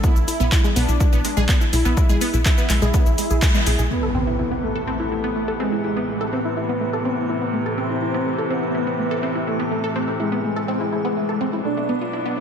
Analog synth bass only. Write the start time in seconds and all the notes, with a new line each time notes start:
0.16 B1
0.40 B1
0.76 B1
0.89 B1
1.13 B1
1.37 B1
1.73 B1
1.85 B1
2.10 B1
2.34 B1
2.70 B1
2.82 B1
3.06 B1
3.31 B1
3.67 B1
3.79 B1